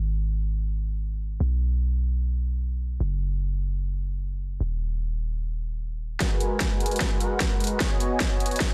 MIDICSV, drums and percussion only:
0, 0, Header, 1, 2, 480
1, 0, Start_track
1, 0, Key_signature, 5, "minor"
1, 0, Tempo, 400000
1, 1686, Time_signature, 4, 2, 24, 8
1, 10487, End_track
2, 0, Start_track
2, 0, Title_t, "Drums"
2, 7445, Note_on_c, 9, 36, 91
2, 7446, Note_on_c, 9, 38, 45
2, 7446, Note_on_c, 9, 42, 78
2, 7565, Note_off_c, 9, 36, 0
2, 7566, Note_off_c, 9, 38, 0
2, 7566, Note_off_c, 9, 42, 0
2, 7686, Note_on_c, 9, 42, 64
2, 7806, Note_off_c, 9, 42, 0
2, 7925, Note_on_c, 9, 36, 91
2, 7925, Note_on_c, 9, 38, 46
2, 7925, Note_on_c, 9, 42, 77
2, 8045, Note_off_c, 9, 36, 0
2, 8045, Note_off_c, 9, 38, 0
2, 8045, Note_off_c, 9, 42, 0
2, 8166, Note_on_c, 9, 42, 48
2, 8231, Note_off_c, 9, 42, 0
2, 8231, Note_on_c, 9, 42, 64
2, 8297, Note_off_c, 9, 42, 0
2, 8297, Note_on_c, 9, 42, 47
2, 8351, Note_off_c, 9, 42, 0
2, 8351, Note_on_c, 9, 42, 62
2, 8405, Note_on_c, 9, 36, 91
2, 8406, Note_off_c, 9, 42, 0
2, 8406, Note_on_c, 9, 38, 48
2, 8406, Note_on_c, 9, 42, 78
2, 8525, Note_off_c, 9, 36, 0
2, 8526, Note_off_c, 9, 38, 0
2, 8526, Note_off_c, 9, 42, 0
2, 8646, Note_on_c, 9, 42, 65
2, 8766, Note_off_c, 9, 42, 0
2, 8885, Note_on_c, 9, 36, 89
2, 8885, Note_on_c, 9, 38, 47
2, 8885, Note_on_c, 9, 42, 75
2, 9005, Note_off_c, 9, 36, 0
2, 9005, Note_off_c, 9, 38, 0
2, 9005, Note_off_c, 9, 42, 0
2, 9125, Note_on_c, 9, 42, 46
2, 9168, Note_off_c, 9, 42, 0
2, 9168, Note_on_c, 9, 42, 62
2, 9204, Note_off_c, 9, 42, 0
2, 9204, Note_on_c, 9, 42, 74
2, 9324, Note_off_c, 9, 42, 0
2, 9364, Note_on_c, 9, 38, 50
2, 9364, Note_on_c, 9, 42, 75
2, 9365, Note_on_c, 9, 36, 92
2, 9484, Note_off_c, 9, 38, 0
2, 9484, Note_off_c, 9, 42, 0
2, 9485, Note_off_c, 9, 36, 0
2, 9605, Note_on_c, 9, 42, 63
2, 9725, Note_off_c, 9, 42, 0
2, 9844, Note_on_c, 9, 36, 91
2, 9844, Note_on_c, 9, 38, 53
2, 9844, Note_on_c, 9, 42, 76
2, 9964, Note_off_c, 9, 36, 0
2, 9964, Note_off_c, 9, 38, 0
2, 9964, Note_off_c, 9, 42, 0
2, 10084, Note_on_c, 9, 42, 46
2, 10150, Note_off_c, 9, 42, 0
2, 10150, Note_on_c, 9, 42, 62
2, 10215, Note_off_c, 9, 42, 0
2, 10215, Note_on_c, 9, 42, 46
2, 10270, Note_off_c, 9, 42, 0
2, 10270, Note_on_c, 9, 42, 59
2, 10324, Note_on_c, 9, 36, 89
2, 10325, Note_off_c, 9, 42, 0
2, 10325, Note_on_c, 9, 38, 52
2, 10325, Note_on_c, 9, 42, 77
2, 10444, Note_off_c, 9, 36, 0
2, 10445, Note_off_c, 9, 38, 0
2, 10445, Note_off_c, 9, 42, 0
2, 10487, End_track
0, 0, End_of_file